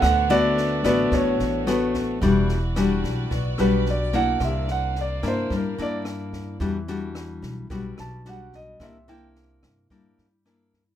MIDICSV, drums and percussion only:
0, 0, Header, 1, 2, 480
1, 0, Start_track
1, 0, Tempo, 548948
1, 28, Time_signature, 4, 2, 24, 8
1, 9576, End_track
2, 0, Start_track
2, 0, Title_t, "Drums"
2, 18, Note_on_c, 9, 37, 60
2, 18, Note_on_c, 9, 38, 23
2, 20, Note_on_c, 9, 36, 56
2, 106, Note_off_c, 9, 37, 0
2, 106, Note_off_c, 9, 38, 0
2, 107, Note_off_c, 9, 36, 0
2, 263, Note_on_c, 9, 38, 22
2, 350, Note_off_c, 9, 38, 0
2, 501, Note_on_c, 9, 38, 23
2, 588, Note_off_c, 9, 38, 0
2, 736, Note_on_c, 9, 37, 55
2, 736, Note_on_c, 9, 38, 23
2, 739, Note_on_c, 9, 36, 23
2, 823, Note_off_c, 9, 37, 0
2, 823, Note_off_c, 9, 38, 0
2, 826, Note_off_c, 9, 36, 0
2, 976, Note_on_c, 9, 38, 25
2, 978, Note_on_c, 9, 36, 59
2, 1063, Note_off_c, 9, 38, 0
2, 1066, Note_off_c, 9, 36, 0
2, 1217, Note_on_c, 9, 38, 21
2, 1305, Note_off_c, 9, 38, 0
2, 1459, Note_on_c, 9, 37, 56
2, 1459, Note_on_c, 9, 38, 25
2, 1546, Note_off_c, 9, 37, 0
2, 1546, Note_off_c, 9, 38, 0
2, 1696, Note_on_c, 9, 38, 25
2, 1698, Note_on_c, 9, 36, 22
2, 1783, Note_off_c, 9, 38, 0
2, 1785, Note_off_c, 9, 36, 0
2, 1935, Note_on_c, 9, 38, 24
2, 1938, Note_on_c, 9, 36, 57
2, 2023, Note_off_c, 9, 38, 0
2, 2026, Note_off_c, 9, 36, 0
2, 2173, Note_on_c, 9, 38, 22
2, 2261, Note_off_c, 9, 38, 0
2, 2414, Note_on_c, 9, 37, 55
2, 2414, Note_on_c, 9, 38, 23
2, 2501, Note_off_c, 9, 37, 0
2, 2501, Note_off_c, 9, 38, 0
2, 2656, Note_on_c, 9, 36, 22
2, 2657, Note_on_c, 9, 38, 25
2, 2743, Note_off_c, 9, 36, 0
2, 2744, Note_off_c, 9, 38, 0
2, 2892, Note_on_c, 9, 38, 24
2, 2895, Note_on_c, 9, 36, 58
2, 2980, Note_off_c, 9, 38, 0
2, 2982, Note_off_c, 9, 36, 0
2, 3130, Note_on_c, 9, 37, 52
2, 3130, Note_on_c, 9, 38, 21
2, 3217, Note_off_c, 9, 37, 0
2, 3217, Note_off_c, 9, 38, 0
2, 3372, Note_on_c, 9, 38, 25
2, 3460, Note_off_c, 9, 38, 0
2, 3610, Note_on_c, 9, 38, 24
2, 3613, Note_on_c, 9, 36, 23
2, 3698, Note_off_c, 9, 38, 0
2, 3701, Note_off_c, 9, 36, 0
2, 3847, Note_on_c, 9, 37, 54
2, 3847, Note_on_c, 9, 38, 23
2, 3852, Note_on_c, 9, 36, 58
2, 3935, Note_off_c, 9, 37, 0
2, 3935, Note_off_c, 9, 38, 0
2, 3939, Note_off_c, 9, 36, 0
2, 4089, Note_on_c, 9, 38, 22
2, 4176, Note_off_c, 9, 38, 0
2, 4330, Note_on_c, 9, 38, 22
2, 4418, Note_off_c, 9, 38, 0
2, 4573, Note_on_c, 9, 36, 22
2, 4573, Note_on_c, 9, 37, 53
2, 4573, Note_on_c, 9, 38, 22
2, 4660, Note_off_c, 9, 36, 0
2, 4661, Note_off_c, 9, 37, 0
2, 4661, Note_off_c, 9, 38, 0
2, 4813, Note_on_c, 9, 36, 57
2, 4815, Note_on_c, 9, 38, 23
2, 4901, Note_off_c, 9, 36, 0
2, 4903, Note_off_c, 9, 38, 0
2, 5055, Note_on_c, 9, 38, 22
2, 5142, Note_off_c, 9, 38, 0
2, 5290, Note_on_c, 9, 37, 57
2, 5290, Note_on_c, 9, 38, 23
2, 5377, Note_off_c, 9, 37, 0
2, 5377, Note_off_c, 9, 38, 0
2, 5532, Note_on_c, 9, 36, 24
2, 5533, Note_on_c, 9, 38, 23
2, 5620, Note_off_c, 9, 36, 0
2, 5620, Note_off_c, 9, 38, 0
2, 5770, Note_on_c, 9, 38, 22
2, 5772, Note_on_c, 9, 36, 59
2, 5857, Note_off_c, 9, 38, 0
2, 5859, Note_off_c, 9, 36, 0
2, 6011, Note_on_c, 9, 38, 20
2, 6099, Note_off_c, 9, 38, 0
2, 6252, Note_on_c, 9, 37, 56
2, 6252, Note_on_c, 9, 38, 22
2, 6339, Note_off_c, 9, 37, 0
2, 6339, Note_off_c, 9, 38, 0
2, 6492, Note_on_c, 9, 38, 23
2, 6493, Note_on_c, 9, 36, 23
2, 6580, Note_off_c, 9, 36, 0
2, 6580, Note_off_c, 9, 38, 0
2, 6733, Note_on_c, 9, 36, 54
2, 6733, Note_on_c, 9, 38, 23
2, 6820, Note_off_c, 9, 38, 0
2, 6821, Note_off_c, 9, 36, 0
2, 6973, Note_on_c, 9, 37, 53
2, 6973, Note_on_c, 9, 38, 20
2, 7061, Note_off_c, 9, 37, 0
2, 7061, Note_off_c, 9, 38, 0
2, 7214, Note_on_c, 9, 38, 23
2, 7302, Note_off_c, 9, 38, 0
2, 7454, Note_on_c, 9, 36, 21
2, 7454, Note_on_c, 9, 38, 21
2, 7541, Note_off_c, 9, 36, 0
2, 7542, Note_off_c, 9, 38, 0
2, 7693, Note_on_c, 9, 37, 53
2, 7693, Note_on_c, 9, 38, 21
2, 7694, Note_on_c, 9, 36, 54
2, 7781, Note_off_c, 9, 37, 0
2, 7781, Note_off_c, 9, 38, 0
2, 7782, Note_off_c, 9, 36, 0
2, 7936, Note_on_c, 9, 38, 21
2, 8024, Note_off_c, 9, 38, 0
2, 8179, Note_on_c, 9, 38, 21
2, 8266, Note_off_c, 9, 38, 0
2, 8418, Note_on_c, 9, 36, 22
2, 8418, Note_on_c, 9, 37, 53
2, 8418, Note_on_c, 9, 38, 23
2, 8505, Note_off_c, 9, 37, 0
2, 8505, Note_off_c, 9, 38, 0
2, 8506, Note_off_c, 9, 36, 0
2, 8659, Note_on_c, 9, 36, 54
2, 8660, Note_on_c, 9, 38, 23
2, 8747, Note_off_c, 9, 36, 0
2, 8748, Note_off_c, 9, 38, 0
2, 8901, Note_on_c, 9, 38, 20
2, 8989, Note_off_c, 9, 38, 0
2, 9141, Note_on_c, 9, 37, 52
2, 9141, Note_on_c, 9, 38, 21
2, 9229, Note_off_c, 9, 37, 0
2, 9229, Note_off_c, 9, 38, 0
2, 9384, Note_on_c, 9, 36, 23
2, 9386, Note_on_c, 9, 38, 22
2, 9471, Note_off_c, 9, 36, 0
2, 9474, Note_off_c, 9, 38, 0
2, 9576, End_track
0, 0, End_of_file